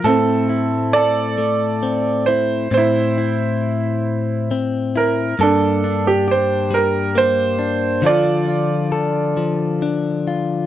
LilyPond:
<<
  \new Staff \with { instrumentName = "Grand piano" } { \time 6/8 \key a \phrygian \tempo 4. = 45 << { a'4 d''4. c''8 | c''2 r8 bes'8 | a'8. g'16 c''8 bes'8 c''4 | d''2 r4 | } \\ { c'4 a'4. r8 | e'2 r4 | d'4. r4. | f'2 r4 | } >> }
  \new Staff \with { instrumentName = "Clean electric guitar" } { \time 6/8 \key a \phrygian << { <a c' e'>8 e'8 a'4 c'8 e'8 | c'8 e'4. c'8 e'8 | bes8 d'8 g'4 bes8 d'8 | <f d' f' a'>8 f'8 a'4 d'8 f'8 | } \\ { a,4. a4. | a,2. | g,4. g4. | d4. f4. | } >> }
>>